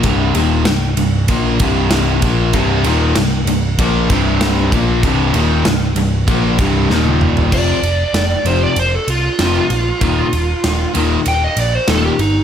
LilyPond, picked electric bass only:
\new Staff \with { instrumentName = "Picked electric bass" } { \clef bass \time 4/4 \key f \major \tempo 4 = 96 c,,8 ees,,8 c,,8 c,,8 bes,,8 c,,4 bes,,8 | c,,8 ees,,8 c,,8 c,,8 bes,,8 c,,4 bes,,8 | c,,8 ees,,8 c,,8 c,,8 bes,,8 c,,8 ees,,4 | f,,8 f,,8 f,,8 f,,8 f,,8 c,8 f,,8 bes,,8 |
ees,,8 ees,,8 ees,,8 ees,,8 ees,,8 bes,,8 ees,,8 g,,8 | }